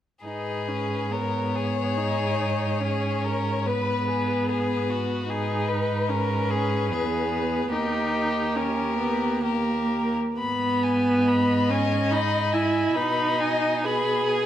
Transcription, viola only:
0.24 0.70 D#4 soft
0.68 1.13 C#4 soft
1.11 1.98 B3 soft
1.97 2.39 D#4 soft
2.40 2.83 D#4 soft
2.81 3.68 C#4 soft
3.66 5.28 B3 soft
5.29 6.11 D#4 soft
6.09 6.93 C#4 soft
6.91 7.74 B3 soft
7.72 8.57 D#4 soft
8.56 8.98 C#4 soft
8.98 9.45 B3 soft
9.43 10.17 A#3 soft
10.38 11.71 B3 soft
11.70 12.13 C#4 soft
12.11 12.54 D#4 soft
12.53 12.97 E4 soft
12.95 13.86 D#4 medium
13.85 14.46 G#4 soft

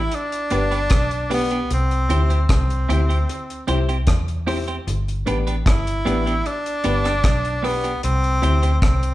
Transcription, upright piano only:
0.51 0.68 B3 medium
0.51 0.68 D4 medium
0.51 0.69 G4 medium
0.51 0.69 B4 loud
1.30 1.47 B3 medium
1.30 1.47 D4 medium
1.30 1.48 G4 medium
1.30 1.48 B4 medium
2.10 2.26 C4 medium
2.10 2.27 E4 medium
2.10 2.27 G4 medium
2.10 2.27 C5 medium
2.89 3.06 C4 medium
2.89 3.06 E4 medium
2.89 3.06 G4 medium
2.89 3.06 C5 medium
3.68 3.85 C4 medium
3.68 3.85 E4 medium
3.68 3.85 G4 medium
3.68 3.85 C5 loud
4.47 4.64 C4 medium
4.47 4.64 E4 medium
4.47 4.64 G4 medium
4.47 4.64 C5 loud
4.68 4.76 G4 soft
4.68 4.76 C5 soft
5.25 5.43 B3 medium
5.25 5.43 D4 medium
5.25 5.43 G4 medium
5.25 5.43 B4 medium
6.05 6.22 B3 medium
6.05 6.22 D4 medium
6.05 6.22 G4 medium
6.05 6.23 B4 loud
6.84 7.01 B3 loud
6.84 7.01 D4 medium
6.84 7.01 G4 medium
6.84 7.02 B4 loud
7.63 7.80 B3 medium
7.63 7.80 D4 medium
7.63 7.81 G4 medium
7.63 7.81 B4 loud
7.84 7.92 G4 soft
7.84 7.92 B4 soft
8.42 8.59 C4 medium
8.42 8.59 E4 medium
8.42 8.59 G4 medium
8.42 8.59 C5 loud

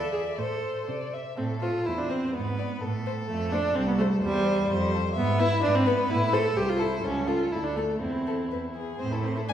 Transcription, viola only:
0.00 0.12 A4 medium
0.13 0.21 G#4 medium
0.39 0.88 A4 medium
1.37 1.45 C4 medium
1.62 1.87 F4 medium
1.86 2.00 E4 medium
1.98 2.11 D4 medium
2.10 2.36 C4 medium
2.35 3.06 B3 medium
3.28 3.54 A3 medium
3.53 3.77 D4 medium
3.75 3.87 C4 medium
3.88 3.92 B3 medium
3.98 4.06 A3 medium
4.22 4.91 G3 medium
5.17 5.41 B3 medium
5.40 5.62 E4 medium
5.63 5.77 D4 medium
5.75 5.88 C4 medium
5.87 6.12 B3 medium
6.10 6.35 E4 medium
6.34 6.58 A4 medium
6.57 6.71 G4 medium
6.70 6.82 F4 medium
6.80 7.03 E4 medium
7.04 7.29 C#4 medium
7.27 7.53 F4 medium
7.52 7.66 E4 medium
7.64 7.78 D4 medium
7.76 8.02 A3 soft
8.00 8.50 C4 soft
9.00 9.13 C4 medium
9.12 9.25 E4 medium
9.24 9.38 C4 medium
9.36 9.47 E4 soft
9.48 9.53 D4 medium

